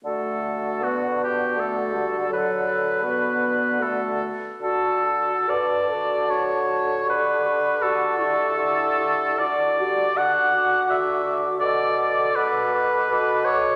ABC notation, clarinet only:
X:1
M:3/4
L:1/8
Q:1/4=79
K:D
V:1 name="Clarinet"
F F4- F | A A F2 F z | F F F F F F | G G G G G G |
F F F F F F | A A A A A A |]